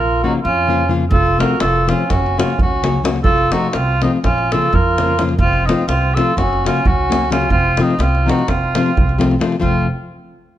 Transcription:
Already playing: upright bass A#1, accordion F4, cor anglais A#4
0.23 nylon-string guitar C#3 F3 A#3 C#4 F4, accordion D#4, cor anglais F#4
0.43 upright bass F2, accordion C#4, cor anglais F4
0.67 nylon-string guitar C#3 F3 A#3 C#4 F4
0.89 nylon-string guitar C#3 F3 A#3 C#4 F4
1.10 upright bass F1, accordion F4, cor anglais A4, davul low
1.27 davul high
1.38 nylon-string guitar C3 F3 A3 C4 F4, accordion F#4, cor anglais A#4, davul high
1.60 upright bass F1, accordion F4, cor anglais A4, davul high
1.87 nylon-string guitar C3 F3 A3 C4 F4, accordion C#4, cor anglais F4, davul high
2.10 upright bass F#1, accordion C#4, cor anglais F#4, davul high, davul low
2.26 davul high
2.38 nylon-string guitar C#3 F#3 A#3 C#4 F#4, accordion C#4, cor anglais F4, davul high
2.50 davul high
2.59 upright bass C#2, accordion C#4, cor anglais F#4, davul low
2.83 nylon-string guitar C#3 F#3 A#3 C#4 F#4, davul high
3.03 nylon-string guitar C#3 F#3 A#3 C#4 F#4, davul high
3.16 davul high
3.24 upright bass F1, accordion F4, cor anglais A4, davul low
3.38 davul high
3.51 nylon-string guitar C3 F3 A3 C4 F4, accordion D#4, cor anglais F#4, davul high
3.69 accordion D#4, cor anglais F#4
3.73 upright bass C2, accordion C4, cor anglais F4, davul high
4.02 nylon-string guitar C3 F3 A3 C4 F4, accordion C4, cor anglais D#4, davul high
4.22 upright bass A#1, accordion C#4, cor anglais F4, davul high, davul low
4.38 davul high
4.51 nylon-string guitar C#3 F3 A#3 C#4 F4, accordion F4, cor anglais A4, davul high
4.62 davul high
4.73 upright bass F2, accordion F4, cor anglais A#4, davul low
4.98 nylon-string guitar C#3 F3 A#3 C#4 F4, davul high
5.19 nylon-string guitar C#3 F3 A#3 C#4 F4, davul high
5.29 davul high
5.39 upright bass F1, accordion C4, cor anglais F4, davul low
5.53 davul high
5.65 nylon-string guitar C3 F3 A3, accordion C4, cor anglais D#4, davul high
5.70 nylon-string guitar C4 F4
5.87 upright bass C2, accordion C4, cor anglais F4, davul high
6.15 nylon-string guitar C3 F3 A3 C4 F4, accordion F4, cor anglais A4, davul high
6.37 upright bass F#1, accordion C#4, cor anglais F#4, davul high, davul low
6.53 davul high
6.64 nylon-string guitar C#3 F#3 A#3 C#4 F#4, accordion C#4, cor anglais F4, davul high
6.77 davul high
6.85 upright bass C#2, cor anglais F#4, davul low
6.90 accordion C#4
7.09 nylon-string guitar C#3 F#3 A#3 C#4 F#4, davul high
7.30 nylon-string guitar C#3 F#3 A#3 C#4 F#4, accordion C#4, cor anglais F4, davul high
7.41 davul high
7.50 upright bass F1, accordion C4, cor anglais F4, davul low
7.77 nylon-string guitar C3 F3 A3 C4 F4, accordion C4, davul high
7.81 cor anglais D#4
7.91 davul high
7.99 upright bass C2, accordion C4, cor anglais F4, davul high
8.15 davul high
8.25 nylon-string guitar C3 F3 A3 C4 F4, accordion D#4
8.29 cor anglais F#4, davul high
8.39 davul high
8.48 upright bass F1, accordion C4, cor anglais F4, davul high, davul low
8.75 nylon-string guitar C3 F3 A3 C4 F4, davul high
8.86 davul high
8.97 upright bass C2, davul low
9.09 davul high
9.18 nylon-string guitar C3 F3 A3 C4 F4, davul high
9.31 davul high
9.39 nylon-string guitar C3 F3 A3 C4 F4, davul high
9.52 davul high
9.60 upright bass F1, nylon-string guitar F3 A3 C4 F4, accordion C4, cor anglais F4, davul low

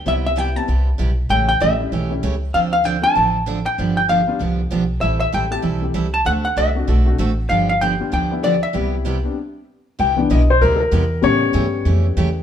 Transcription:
0.05 upright bass C2, steel-string acoustic guitar C3 G3 B3 E4 G4, upright piano G3 B3 C4 E4, hollow-body jazz guitar E5
0.26 hollow-body jazz guitar E5
0.36 steel-string acoustic guitar C3 G3 B3 E4 G4, hollow-body jazz guitar G5
0.55 upright piano G3 B3 C4 E4, hollow-body jazz guitar A5
0.68 upright bass C2, steel-string acoustic guitar C3 G3 B3 E4 G4
0.98 upright bass B1, steel-string acoustic guitar C3 G3 B3 E4 G4
1.29 upright bass A1, steel-string acoustic guitar C#3 E3 A3 C#4 G4, hollow-body jazz guitar G5
1.49 hollow-body jazz guitar G5
1.60 upright bass A1, steel-string acoustic guitar C#3 E3 A3 C#4 G4, hollow-body jazz guitar E5
1.78 upright piano G3 A3 C#4 E4
1.92 upright bass B1, steel-string acoustic guitar C#3 E3 A3 C#4 G4
2.10 upright piano G3 A3 C#4 E4
2.23 upright bass C#2, steel-string acoustic guitar C#3 E3 A3 C#4 G4
2.54 upright bass D2, steel-string acoustic guitar D3 F3 C4 D4 A4, hollow-body jazz guitar F5
2.73 hollow-body jazz guitar F5
2.84 steel-string acoustic guitar D3 F3 C4 D4 A4, hollow-body jazz guitar G5
3.02 upright piano A3 C4 D4 F4, hollow-body jazz guitar A5
3.15 upright bass A1, steel-string acoustic guitar D3 F3 C4 D4 A4
3.46 steel-string acoustic guitar D3 F3 C4 D4 A4
3.66 hollow-body jazz guitar G5
3.78 upright bass G1, steel-string acoustic guitar D3 F3 B3 D4 G4
3.97 hollow-body jazz guitar G5
4.09 steel-string acoustic guitar D3 F3 B3 D4 G4, hollow-body jazz guitar F5
4.27 upright piano G3 B3 D4 F4
4.39 upright bass C2, steel-string acoustic guitar D3 F3 B3 D4 G4
4.71 upright bass B1, steel-string acoustic guitar D3 F3 B3 D4 G4
5.01 upright bass A1, steel-string acoustic guitar E3 G3 C4 E4 A4, hollow-body jazz guitar E5
5.20 hollow-body jazz guitar E5
5.32 upright bass A1, steel-string acoustic guitar E3 G3 C4 E4 A4, hollow-body jazz guitar G5
5.51 upright piano A3 C4 E4 G4, hollow-body jazz guitar A5
5.62 upright bass B1, steel-string acoustic guitar E3 G3 C4 E4 A4
5.82 upright piano A3 C4 E4 G4
5.94 upright bass C2, steel-string acoustic guitar E3 G3 C4 E4 A4
6.14 hollow-body jazz guitar A5
6.25 upright bass D2, steel-string acoustic guitar D3 A3 C4 F#4 A4, hollow-body jazz guitar F#5
6.45 hollow-body jazz guitar F#5
6.56 upright bass C2, steel-string acoustic guitar D3 A3 C4 F#4 A4, hollow-body jazz guitar E5
6.75 upright piano A3 C4 D4 F#4
6.87 upright bass B1, steel-string acoustic guitar D3 A3 C4 F#4 A4
7.06 upright piano A3 C4 D4 F#4
7.14 hollow-body jazz guitar D5
7.18 upright bass A1, steel-string acoustic guitar D3 A3 C4 F#4 A4
7.49 upright bass G1, steel-string acoustic guitar D3 F3 B3 D4 G4, hollow-body jazz guitar F5
7.69 hollow-body jazz guitar F5
7.81 steel-string acoustic guitar D3 F3 B3 D4 G4, hollow-body jazz guitar G5
8.00 upright piano G3 B3 D4 F4
8.12 upright bass D2, steel-string acoustic guitar D3 F3 B3 D4 G4, hollow-body jazz guitar G5
8.31 upright piano G3 B3 D4 E4
8.43 steel-string acoustic guitar D3 F3 B3 D4 G4, hollow-body jazz guitar D5
8.63 hollow-body jazz guitar E5
8.73 upright bass C2, steel-string acoustic guitar C3 G3 B3 E4 G4, upright piano G3 B3 C4 E4
9.05 steel-string acoustic guitar C3 G3 B3 E4 G4
9.23 upright piano G3 B3 C4 D4
9.99 upright bass C2, steel-string acoustic guitar C3 G3 B3 E4 G4, upright piano G5
10.16 upright piano E3 B3 D4
10.30 upright bass B1, steel-string acoustic guitar C3 G3 B3 E4 G4, upright piano D#5
10.50 upright piano C5
10.61 upright bass D2, steel-string acoustic guitar C3 G3 B3 E4 G4, upright piano A#4
10.76 upright piano A4
10.81 upright piano A#4
10.91 upright bass E2, steel-string acoustic guitar C3 G3 B3 E4 G4
11.22 upright bass A2, steel-string acoustic guitar C#3 E3 A3 C#4 G4, upright piano G3 B3 C#4 C#5
11.53 upright bass G2, steel-string acoustic guitar C#3 E3 A3 C#4 G4
11.85 upright bass F2, steel-string acoustic guitar C#3 E3 A3 C#4 G4
12.17 upright bass E2, steel-string acoustic guitar C#3 E3 A3 C#4 G4

